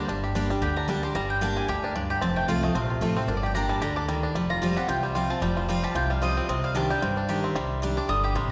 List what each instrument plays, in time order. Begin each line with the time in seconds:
Already playing: five-string banjo G3 G4, mandolin C5
0.08 upright bass G1, steel-string acoustic guitar G2, five-string banjo D4
0.24 five-string banjo G4
0.35 steel-string acoustic guitar G3 A#3 D4 G4, five-string banjo D4
0.50 five-string banjo G3, steel-string acoustic guitar D4 G4
0.61 upright bass D2, steel-string acoustic guitar D3, five-string banjo G4, mandolin G5
0.76 five-string banjo D4, mandolin A#5
0.88 steel-string acoustic guitar G3 A#3 D4 G4, five-string banjo G3, mandolin A5
1.03 five-string banjo D4, steel-string acoustic guitar D4 G4, mandolin C6
1.15 upright bass G1, steel-string acoustic guitar G2, five-string banjo G3, mandolin A#5
1.30 mandolin G5
1.41 steel-string acoustic guitar G3 A#3 D4 G4, five-string banjo D4, mandolin A5
1.56 five-string banjo G3, mandolin G#5
1.68 upright bass D2, steel-string acoustic guitar A2, five-string banjo G4, mandolin G5
1.83 five-string banjo D4, mandolin A#4
1.95 steel-string acoustic guitar G2, five-string banjo D4, mandolin D5
2.10 five-string banjo G4, mandolin G5
2.21 upright bass F1, steel-string acoustic guitar F2, five-string banjo C4, mandolin A5
2.36 five-string banjo A3, mandolin G5
2.48 upright bass C2, steel-string acoustic guitar F3 A3 C4 F4, five-string banjo F4, mandolin F5
2.63 five-string banjo A3, steel-string acoustic guitar C4 F4, mandolin D#5
2.75 upright bass A#1, steel-string acoustic guitar C3, five-string banjo C4, mandolin F5
2.90 five-string banjo F4
3.01 upright bass A1, steel-string acoustic guitar F3 A3 C4 F4, five-string banjo A3
3.16 five-string banjo C4, steel-string acoustic guitar C4 F4, mandolin C5
3.27 upright bass G1, steel-string acoustic guitar G2, five-string banjo D4, mandolin A#4
3.37 mandolin D5
3.43 five-string banjo G4, mandolin G5
3.55 steel-string acoustic guitar G3 A#3 D4 G4, five-string banjo D4, mandolin A#5
3.69 five-string banjo G3, mandolin A5
3.81 upright bass D2, steel-string acoustic guitar D3, five-string banjo G4, mandolin A#5
3.96 five-string banjo D4, mandolin D6
4.08 steel-string acoustic guitar D#3, five-string banjo G3
4.23 five-string banjo D4
4.34 upright bass F1, steel-string acoustic guitar F3, five-string banjo G3
4.50 five-string banjo F4, mandolin A#5
4.62 steel-string acoustic guitar F3 G3 C4 F4, five-string banjo G3, mandolin A5
4.76 steel-string acoustic guitar C4 F4, five-string banjo G4, mandolin F#5
4.88 upright bass C2, steel-string acoustic guitar C3, five-string banjo F4, mandolin G5
5.03 five-string banjo G3, mandolin C5
5.15 steel-string acoustic guitar F3 G3 C4 F4, five-string banjo F4, mandolin F5
5.30 five-string banjo C4, steel-string acoustic guitar C4 F4, mandolin A5
5.41 upright bass F1, steel-string acoustic guitar F3, five-string banjo G3, mandolin G5
5.57 five-string banjo F4, mandolin C5
5.69 steel-string acoustic guitar F3 G3 C4 F4, five-string banjo G3, mandolin F5
5.84 five-string banjo G4, mandolin A5
5.95 upright bass C2, steel-string acoustic guitar C3, five-string banjo F4, mandolin G5
6.10 five-string banjo G3, mandolin F5
6.22 steel-string acoustic guitar F3 G3 C4 F4, five-string banjo F4, mandolin D#5
6.37 five-string banjo C4, mandolin D5
6.48 upright bass C2, steel-string acoustic guitar C3, five-string banjo C4, mandolin D#5
6.64 five-string banjo G3, mandolin F5
6.75 steel-string acoustic guitar D#3 G3 D4 G4, five-string banjo D4, mandolin A5
6.90 five-string banjo G3, steel-string acoustic guitar D4 G4, mandolin G5
7.02 upright bass G1, steel-string acoustic guitar G2, five-string banjo C4
7.17 five-string banjo D4
7.28 steel-string acoustic guitar D#3 G3 D4 G4, five-string banjo G4
7.44 five-string banjo C4
7.55 upright bass C2, steel-string acoustic guitar C3, five-string banjo G3, mandolin C6
7.82 steel-string acoustic guitar D#3 G3 D4 G4, five-string banjo G3
7.97 five-string banjo D4, steel-string acoustic guitar D4 G4, mandolin D6
8.09 upright bass G1, steel-string acoustic guitar D3, five-string banjo G3, mandolin D#6
8.23 five-string banjo G4, mandolin D6
8.35 upright bass A1, steel-string acoustic guitar C3, five-string banjo G3, mandolin C6